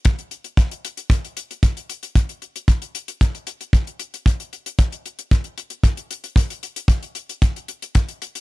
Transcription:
\new DrumStaff \with { instrumentName = "Drums" } \drummode { \time 4/4 \tempo 4 = 114 <hh bd>16 hh16 hh16 hh16 <hh bd>16 hh16 hh16 hh16 <hh bd>16 hh16 hh16 hh16 <hh bd>16 hh16 hh16 hh16 | <hh bd>16 hh16 hh16 hh16 <hh bd>16 hh16 hh16 hh16 <hh bd>16 hh16 hh16 hh16 <hh bd>16 hh16 hh16 hh16 | <hh bd>16 hh16 hh16 hh16 <hh bd>16 hh16 hh16 hh16 <hh bd>16 hh16 hh16 hh16 <hh bd>16 hh16 hh16 hh16 | <hh bd>16 hh16 hh16 hh16 <hh bd>16 hh16 hh16 hh16 <hh bd>16 hh16 hh16 hh16 <hh bd>16 hh16 hh16 hh16 | }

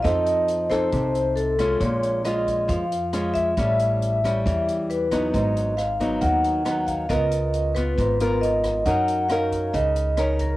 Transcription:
<<
  \new Staff \with { instrumentName = "Vibraphone" } { \time 4/4 \key des \mixolydian \tempo 4 = 136 ees''4. c''4. a'4 | des''4 ees''4 f''4. fes''8~ | fes''2. ces''4 | ees''4 f''4 ges''4. f''8 |
ees''4. ces''4. ees''4 | ges''4 f''4 ees''4 des''8 bes'8 | }
  \new Staff \with { instrumentName = "Nylon-string guitar" } { \time 4/4 \key des \mixolydian << { <c' ees' a'>4. <c' ees' a'>2 <aes des' f'>8~ | <aes des' f'>4 <aes des' f'>4. r8 <aes des' f'>4 | <g cis'>4. <g cis'>2 <ges ces' dis'>8~ | <ges ces' dis'>4 r8 <ges ces' ees'>4. <ges ces' ees'>4 |
<ces' f' bes'>4. <ces' f'>4 <ces' f' bes'>4. | <des' ees' bes'>4 <des' ees' bes'>2 <des' ees' bes'>4 | } \\ { f2 c2 | bes,2 f2 | a,2 e2 | aes,2 ees2 |
des2 aes,2 | ges2 des2 | } >> }
  \new Staff \with { instrumentName = "Upright bass" } { \clef bass \time 4/4 \key des \mixolydian f,2 c,2 | bes,,2 f,2 | a,,2 e,2 | aes,,2 ees,2 |
des,2 aes,,2 | ges,2 des,2 | }
  \new DrumStaff \with { instrumentName = "Drums" } \drummode { \time 4/4 <hh bd ss>8 hh8 hh8 <hh bd ss>8 <hh bd>8 hh8 hh8 <hh bd ss>8 | <hh bd>8 hh8 <hh ss>8 <hh bd>8 <hh bd>8 hh8 <hh ss>8 <hh bd>8 | <hh bd ss>8 hh8 hh8 <hh bd ss>8 <hh bd>8 hh8 hh8 <hh bd ss>8 | <hh bd>8 hh8 <hh ss>8 <hh bd>8 <hh bd>8 hh8 <hh ss>8 <hh bd>8 |
<hh bd ss>8 hh8 hh8 <hh bd ss>8 <hh bd>8 hh8 hh8 <hh bd ss>8 | <hh bd>8 hh8 <hh ss>8 <hh bd>8 <hh bd>8 hh8 <hh ss>8 <hh bd>8 | }
>>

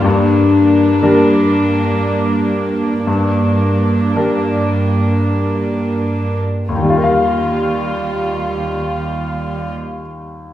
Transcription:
<<
  \new Staff \with { instrumentName = "Harp" } { \time 3/4 \key ees \major \tempo 4 = 50 << { r2. | r2. | <ees bes ees' f' g' f''>2. | } \\ { <g, bes d' g'>2.~ | <g, bes d' g'>2.~ | <g, bes d' g'>2. | } >> }
  \new Staff \with { instrumentName = "Viola section" } { \time 3/4 \key ees \major <bes d'>2. | <bes d'>2. | <g f'>2. | }
  \new Staff \with { instrumentName = "Grand piano" } { \time 3/4 \key ees \major g,4 <g d' bes'>2 | g,4 <g d' bes'>2 | <ees, ees g f' bes' f''>2. | }
  \new Staff \with { instrumentName = "Cello section" } { \clef bass \time 3/4 \key ees \major g,2. | g,2. | ees,2. | }
>>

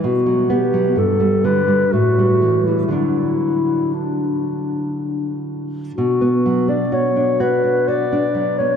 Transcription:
<<
  \new Staff \with { instrumentName = "Clarinet" } { \time 3/4 \key b \minor \tempo 4 = 62 fis'8 g'8 a'8 b'8 fis'8. e'16 | e'4 d'4. r8 | fis'8. d''16 cis''8 b'8 d''8. cis''16 | }
  \new Staff \with { instrumentName = "Nylon-string guitar" } { \clef bass \time 3/4 \key b \minor b,16 fis16 b16 fis16 g,16 g16 d16 g16 a,16 g16 e16 g16 | <d fis d'>2. | b,16 b16 fis16 d'16 fis'16 d'16 fis'16 d'16 fis'16 d'16 fis16 b16 | }
>>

